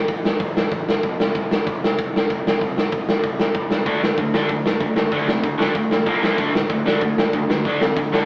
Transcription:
0.08 picked electric bass A1, kick, open hi-hat
0.24 picked electric bass G2, snare
0.40 picked electric bass A1, kick, open hi-hat
0.57 snare
0.72 picked electric bass A1, kick, open hi-hat
0.88 picked electric bass A1, snare
1.03 picked electric bass B1, kick, open hi-hat
1.19 picked electric bass C2, snare
1.35 picked electric bass C2, kick, open hi-hat
1.51 picked electric bass G2, snare
1.67 picked electric bass C2, kick, open hi-hat
1.83 picked electric bass C2, snare
1.99 picked electric bass C2, kick, open hi-hat
2.13 picked electric bass G2, snare
2.30 picked electric bass C2, kick, open hi-hat
2.45 picked electric bass C2, snare
2.61 picked electric bass C2, kick, open hi-hat
2.76 picked electric bass A2, snare
2.92 picked electric bass C2, kick, open hi-hat
3.09 snare
3.24 picked electric bass C2, kick, open hi-hat
3.39 picked electric bass C2, snare
3.54 picked electric bass C2, kick, open hi-hat
3.71 picked electric bass C2, snare
3.85 picked electric bass D2, distorted electric guitar D3 A3 D4, kick, open hi-hat
4.01 picked electric bass A2, distorted electric guitar D3 A3, snare
4.18 picked electric bass D2, distorted electric guitar D3 A3, kick, open hi-hat
4.34 picked electric bass D2, distorted electric guitar D3 A3 D4, snare
4.49 picked electric bass D2, distorted electric guitar D3 A3, kick, open hi-hat
4.66 picked electric bass A2, distorted electric guitar D3 A3, snare
4.80 picked electric bass D2, distorted electric guitar D3 A3, kick, open hi-hat
4.96 picked electric bass D2, distorted electric guitar D3 A3, snare
5.11 picked electric bass D2, distorted electric guitar D3 A3 D4, kick, open hi-hat
5.27 picked electric bass C3, distorted electric guitar D3 A3, snare
5.43 picked electric bass D2, distorted electric guitar D3 A3, kick, open hi-hat
5.58 distorted electric guitar D3 A3 D4, snare
5.74 picked electric bass D2, distorted electric guitar D3 A3, kick, open hi-hat
5.91 picked electric bass A1, distorted electric guitar D3 A3, snare
6.06 picked electric bass A#1, distorted electric guitar A#2 F3 A#3, kick, open hi-hat
6.22 picked electric bass A#1, distorted electric guitar A#2 F3 A#3, snare
6.37 picked electric bass D2, distorted electric guitar D3 A3 D4, kick, open hi-hat
6.54 picked electric bass A2, distorted electric guitar D3 A3, snare
6.70 picked electric bass D2, distorted electric guitar D3 A3, kick, open hi-hat
6.86 picked electric bass D2, distorted electric guitar D3 A3 D4, snare
7.01 picked electric bass D2, distorted electric guitar D3 A3, kick, open hi-hat
7.17 picked electric bass A2, distorted electric guitar D3 A3, snare
7.33 picked electric bass D2, distorted electric guitar D3 A3, kick, open hi-hat
7.49 picked electric bass D2, distorted electric guitar D3 A3, snare
7.65 picked electric bass D2, distorted electric guitar D3 A3 D4, kick, open hi-hat
7.81 picked electric bass C3, distorted electric guitar D3 A3, snare
7.97 picked electric bass D2, distorted electric guitar D3 A3, kick, open hi-hat
8.12 distorted electric guitar D3 A3 D4, snare

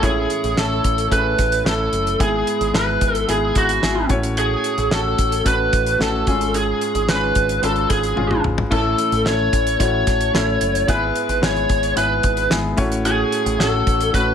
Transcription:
0.02 picked electric bass A1, grand piano A2 E3 A3 C#4 E4 C#5, lead electric guitar G#4, kick, closed hi-hat
0.30 closed hi-hat
0.44 picked electric bass A1, closed hi-hat
0.56 picked electric bass A1, grand piano A3 C#4 E4 A4, lead electric guitar A4, snare
0.84 picked electric bass A1, kick, closed hi-hat
0.98 closed hi-hat
1.10 picked electric bass A1, grand piano A3 C#4 E4 G#4, lead electric guitar B4, kick, closed hi-hat
1.18 grand piano A4
1.38 picked electric bass A1, kick, snare, closed hi-hat
1.52 closed hi-hat
1.64 picked electric bass A1, grand piano A3 C#4 E4 A4, lead electric guitar A4, snare
1.92 picked electric bass F#1, closed hi-hat
2.07 closed hi-hat
2.19 picked electric bass G#1, grand piano G#2 G#3 B3 E4 G#4, lead electric guitar G#4, kick, closed hi-hat
2.47 closed hi-hat
2.60 picked electric bass G#1, closed hi-hat
2.73 picked electric bass G#1, grand piano G#3 B3 E4 B4, lead electric guitar B4, snare
3.01 picked electric bass G#1, kick, closed hi-hat
3.15 closed hi-hat
3.28 picked electric bass G#1, grand piano G#3 B3 E4 G#4, lead electric guitar G#4, closed hi-hat
3.55 picked electric bass G#1, lead electric guitar F#4, kick, closed hi-hat
3.69 closed hi-hat
3.82 picked electric bass G#1, grand piano G#3 B3 E4 G#4, snare
4.09 picked electric bass A1, grand piano A2 A3 C#4 F#4 C#5, kick, closed hi-hat
4.23 closed hi-hat
4.37 lead electric guitar G#4, closed hi-hat
4.64 closed hi-hat
4.78 picked electric bass A1, closed hi-hat
4.91 picked electric bass A1, grand piano A3 C#4 F#4 A4, lead electric guitar A4, snare
5.18 picked electric bass A1, kick, closed hi-hat
5.32 closed hi-hat
5.44 picked electric bass A1, grand piano A3 C#4 F#4 A4, lead electric guitar B4, kick, closed hi-hat
5.73 picked electric bass A1, kick, closed hi-hat
5.87 closed hi-hat
5.99 picked electric bass A1, grand piano A3 C#4 F#4 A4, lead electric guitar A4, snare
6.27 picked electric bass G#1, grand piano G#2 G#3 C#4 F4 G#4, kick, closed hi-hat
6.41 closed hi-hat
6.54 lead electric guitar G#4, closed hi-hat
6.81 closed hi-hat
6.95 picked electric bass G#1, closed hi-hat
7.08 picked electric bass G#1, grand piano G#3 C#4 F4 G#4, lead electric guitar B4, snare
7.35 picked electric bass G#1, kick, closed hi-hat
7.49 closed hi-hat
7.62 picked electric bass G#1, grand piano G#3 C#4 F4 B4, lead electric guitar A4, closed hi-hat
7.76 closed hi-hat
7.90 picked electric bass G#1, lead electric guitar G#4, kick, closed hi-hat
8.03 closed hi-hat
8.16 picked electric bass G#1, grand piano G#3 C#4 F4 G#4, high tom
8.31 mid tom
8.44 picked electric bass G#1, mid tom
8.58 floor tom
8.70 picked electric bass A1, grand piano A2 E3 A3 C#4 E4 A4, lead electric guitar A4, kick, splash
8.98 closed hi-hat
9.12 picked electric bass A1, closed hi-hat
9.24 picked electric bass A1, grand piano A3 C#4 E4 A4, lead electric guitar C#5, snare
9.53 picked electric bass A1, kick, closed hi-hat
9.67 closed hi-hat
9.79 picked electric bass A1, grand piano A3 C#4 E4 F#4, lead electric guitar C#5, kick, closed hi-hat
10.07 picked electric bass A1, kick, snare, closed hi-hat
10.21 closed hi-hat
10.33 picked electric bass A1, grand piano A3 C#4 E4 A4, snare
10.61 picked electric bass F#1, closed hi-hat
10.75 closed hi-hat
10.87 picked electric bass G#1, grand piano G#2 G#3 B3 E4 G#4, lead electric guitar B4, kick, closed hi-hat
11.16 closed hi-hat
11.29 picked electric bass G#1, closed hi-hat
11.41 picked electric bass G#1, grand piano G#3 B3 E4 G#4, lead electric guitar C#5, snare
11.56 closed hi-hat
11.69 picked electric bass G#1, kick, closed hi-hat
11.83 closed hi-hat
11.96 picked electric bass G#1, grand piano G#3 B3 E4 G#4, lead electric guitar B4, closed hi-hat
12.23 picked electric bass G#1, kick, closed hi-hat
12.37 closed hi-hat
12.50 picked electric bass G#1, grand piano G#3 B3 E4 G#4, snare
12.77 picked electric bass A1, grand piano A2 A3 C#4 F#4 C#5, kick, closed hi-hat
12.92 closed hi-hat
13.05 lead electric guitar G#4, closed hi-hat
13.32 closed hi-hat
13.46 picked electric bass A1, closed hi-hat
13.58 picked electric bass A1, grand piano A3 C#4 F#4 A4, lead electric guitar A4, snare
13.87 picked electric bass A1, kick, closed hi-hat
14.01 closed hi-hat
14.13 picked electric bass A1, grand piano A3 C#4 F#4 A4, lead electric guitar B4, kick, closed hi-hat

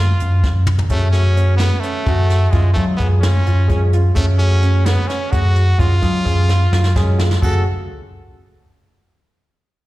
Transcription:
Already playing: picked electric bass F#2, trumpet F4
0.20 picked electric bass F#2, closed hi-hat
0.44 picked electric bass F#2, kick, snare
0.67 mid tom
0.79 floor tom
0.90 picked electric bass F#2, trumpet A3, tine electric piano A3 C#4 F#4 G#4, grand piano C#4, kick, closed hi-hat
1.11 tine electric piano A3 C#4 F#4 G#4, trumpet C#4, snare, closed hi-hat
1.37 grand piano C#4, closed hi-hat
1.57 trumpet B3, snare, closed hi-hat
1.80 trumpet A3, grand piano C#4, closed hi-hat
2.06 picked electric bass F#2, tine electric piano A3 C#4 F#4 G#4, grand piano F#4, kick, closed hi-hat
2.30 snare, closed hi-hat
2.50 picked electric bass F#2, trumpet G#3, tine electric piano G#3 C#4 F4 G#4, grand piano F4, kick, closed hi-hat
2.73 picked electric bass F#3, tine electric piano G#3 C#4 F4 G#4, trumpet A3, grand piano F4, kick, closed hi-hat
2.97 picked electric bass F#2, trumpet B3, grand piano G#4, kick, closed hi-hat
3.20 trumpet C#4, grand piano F4, snare, closed hi-hat
3.46 picked electric bass F#2, grand piano F4, closed hi-hat
3.68 picked electric bass F#2, tine electric piano G#3 C#4 F4 G#4, grand piano C#4, kick, closed hi-hat
3.93 grand piano F4, closed hi-hat
4.14 picked electric bass F#2, tine electric piano A3 C#4 F#4 G#4, trumpet A3, grand piano C#4, kick, closed hi-hat
4.38 tine electric piano A3 C#4 F#4 G#4, trumpet C#4, closed hi-hat
4.63 grand piano C#4, closed hi-hat
4.85 trumpet B3, snare, closed hi-hat
5.08 trumpet C#4, grand piano C#4, snare, closed hi-hat
5.31 picked electric bass F#2, tine electric piano A3 C#4 F#4 G#4, trumpet F#4, grand piano F#4, kick, closed hi-hat
5.56 closed hi-hat
5.78 picked electric bass F#2, tine electric piano G#3 C#4 F4 G#4, grand piano F4, trumpet F4, kick, closed hi-hat
6.01 picked electric bass F#3, tine electric piano G#3 C#4 F4 G#4, grand piano F4, kick, snare, closed hi-hat
6.25 picked electric bass F#2, grand piano G#4, kick, closed hi-hat
6.49 grand piano F4, snare
6.72 picked electric bass F#2, grand piano F4, snare
6.84 snare
6.96 picked electric bass F#2, tine electric piano G#3 C#4 F4 G#4, grand piano C#4, kick, snare
7.19 grand piano F4, snare
7.31 snare
7.40 picked electric bass F#1, tine electric piano A3 C#4 F#4 G#4, grand piano F#4, trumpet A4, kick, crash

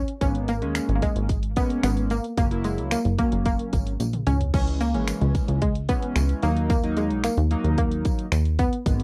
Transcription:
Already playing: synth pluck C#4, downlifter
0.08 closed hi-hat
0.21 analog synth bass G#1, analog polysynth G#3 A#3 B3, synth pluck C#4, kick, closed hi-hat, tambourine
0.35 closed hi-hat
0.48 synth pluck A#3, closed hi-hat, tambourine
0.62 analog synth bass D#2, analog polysynth G#3 A#3 C#4, closed hi-hat
0.75 finger snap, closed hi-hat, tambourine
0.89 analog synth bass G#1, closed hi-hat
0.96 synth pluck A#3
1.02 synth pluck G#3, kick, closed hi-hat, tambourine
1.16 analog synth bass G#1, closed hi-hat
1.29 kick, closed hi-hat, tambourine
1.43 closed hi-hat
1.56 analog polysynth G#3 A#3 C#4, synth pluck B3, kick, closed hi-hat, tambourine
1.70 closed hi-hat
1.83 analog synth bass G#1, synth pluck B3, finger snap, closed hi-hat, tambourine
1.97 closed hi-hat
2.10 synth pluck A#3, closed hi-hat, tambourine
2.24 closed hi-hat
2.37 analog synth bass F#1, analog polysynth F#3 A#3 C#4, synth pluck A#3, kick, closed hi-hat, tambourine
2.51 analog polysynth F#3 A#3 E4, closed hi-hat
2.64 synth pluck G#3, closed hi-hat, tambourine
2.78 analog synth bass C#2, closed hi-hat
2.91 synth pluck A#3, finger snap, closed hi-hat, tambourine
3.05 analog synth bass F#1, closed hi-hat
3.18 analog polysynth F#3 A#3 C#4, synth pluck A#3, kick, closed hi-hat, tambourine
3.32 analog synth bass F#1, closed hi-hat
3.46 synth pluck A#3, kick, closed hi-hat, tambourine
3.59 closed hi-hat
3.73 analog synth bass G#1, kick, closed hi-hat, tambourine
3.87 closed hi-hat
4.00 analog synth bass A#1, closed hi-hat, high tom, tambourine
4.13 closed hi-hat, mid tom
4.27 analog synth bass C#2, synth pluck C#4, closed hi-hat, mid tom, tambourine
4.40 closed hi-hat, floor tom
4.54 analog synth bass C#2, analog polysynth E3 G#3 C#4, synth pluck C#4, kick, crash, tambourine
4.68 closed hi-hat
4.81 synth pluck A#3, closed hi-hat, tambourine
4.94 analog synth bass G#1, analog polysynth E3 G#3 C#4, closed hi-hat
5.08 finger snap, closed hi-hat, tambourine
5.21 analog synth bass C#2, closed hi-hat
5.35 kick, closed hi-hat, tambourine
5.48 analog synth bass C#2, closed hi-hat
5.62 synth pluck G#3, kick, closed hi-hat
5.75 closed hi-hat
5.89 analog polysynth E3 G#3 C#4, synth pluck B3, kick, closed hi-hat, tambourine
6.02 closed hi-hat
6.16 analog synth bass C#2, finger snap, closed hi-hat, tambourine
6.29 closed hi-hat
6.43 analog synth bass D#2, analog polysynth F#3 A#3 D#4, synth pluck A#3, closed hi-hat, tambourine
6.57 closed hi-hat
6.70 synth pluck A#3, kick, closed hi-hat, tambourine
6.83 analog polysynth F#3 A#3 D#4, closed hi-hat
6.97 synth pluck G#3, closed hi-hat, tambourine
7.10 analog synth bass A#1, closed hi-hat
7.24 synth pluck A#3, finger snap, closed hi-hat, tambourine
7.37 analog synth bass D#2, closed hi-hat
7.51 analog polysynth F#3 A#3 D#4, closed hi-hat
7.64 analog synth bass D#2, closed hi-hat
7.78 synth pluck A#3, kick, closed hi-hat
7.92 closed hi-hat
8.05 kick, closed hi-hat, tambourine
8.19 closed hi-hat
8.32 analog synth bass D#2, finger snap, closed hi-hat, tambourine
8.45 closed hi-hat
8.59 synth pluck B3, kick, closed hi-hat, tambourine
8.73 closed hi-hat
8.86 analog synth bass G#1, analog polysynth G#3 A#3 B3, kick, closed hi-hat, tambourine
9.00 closed hi-hat

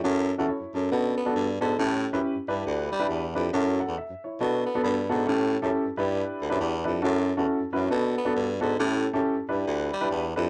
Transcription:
0.04 baritone saxophone F#2, upright piano C#4 E4 F#4 A4
0.38 baritone saxophone E2, upright piano C#4 E4 F#4 A4
0.48 upright piano E4 C#5
0.60 baritone saxophone F#2
0.74 baritone saxophone F#2, upright piano C#4 A4
0.91 baritone saxophone B2, upright piano B3 D4 F#4 A4
1.17 baritone saxophone B3
1.26 upright piano B3 D4 F#4 A4
1.35 baritone saxophone G2
1.61 baritone saxophone G#2, upright piano B3 D4 F#4 A4
1.79 baritone saxophone A2, upright piano C#4 E4 G4 A4
2.13 baritone saxophone F#2, upright piano C#4 E4 G4 B4
2.35 baritone saxophone G2
2.48 baritone saxophone G2, upright piano D4 E4 G4 B4
2.66 baritone saxophone D2
2.92 baritone saxophone G3
3.00 upright piano D4 E4 G4 B4
3.09 baritone saxophone E2
3.35 baritone saxophone F2, upright piano D4 E4 G4 B4
3.53 baritone saxophone F#2, upright piano C#4 E4 F#4 A4
3.80 upright piano A4 F#5
3.88 baritone saxophone E2
3.98 upright piano E5
4.10 baritone saxophone F#2
4.24 upright piano E4 C#5
4.40 baritone saxophone B2, upright piano B3 D4 F#4 A4
4.66 baritone saxophone B3
4.75 upright piano B3 D4 F#4 A4
4.83 baritone saxophone G2, upright piano B5
5.09 baritone saxophone G#2, upright piano B3 D4 F#4 A4 F#5
5.27 baritone saxophone A2, upright piano C#4 E4 G4 A4
5.62 baritone saxophone F#2, upright piano C#4 E4 G4 A4
5.85 baritone saxophone G2
5.97 baritone saxophone G2, upright piano D4 E4 G4 B4
6.42 baritone saxophone D2
6.49 baritone saxophone F#2, upright piano D4 E4 G4 B4
6.60 baritone saxophone E2
6.84 baritone saxophone F2, upright piano D4 E4 G4 B4
7.02 baritone saxophone F#2, upright piano C#4 E4 F#4 A4
7.37 baritone saxophone E2, upright piano C#4 E4 F#4 A4
7.61 baritone saxophone F#2
7.73 baritone saxophone F#2, upright piano C#4 E4 F#4 B4
7.90 baritone saxophone B2, upright piano B3 D4 F#4 A4
8.17 baritone saxophone B3
8.25 upright piano B3 D4 F#4 A4
8.36 baritone saxophone G2
8.61 baritone saxophone G#2, upright piano B3 D4 F#4 A4
8.79 baritone saxophone A2, upright piano C#4 E4 G4 A4
9.13 baritone saxophone F#2, upright piano C#4 E4 G4 A4
9.36 baritone saxophone G2
9.49 baritone saxophone G2, upright piano D4 E4 G4 B4
9.67 baritone saxophone D2
9.93 baritone saxophone G3
10.01 upright piano D4 E4 G4 B4
10.11 baritone saxophone E2
10.36 baritone saxophone F2, upright piano D4 E4 G4 B4

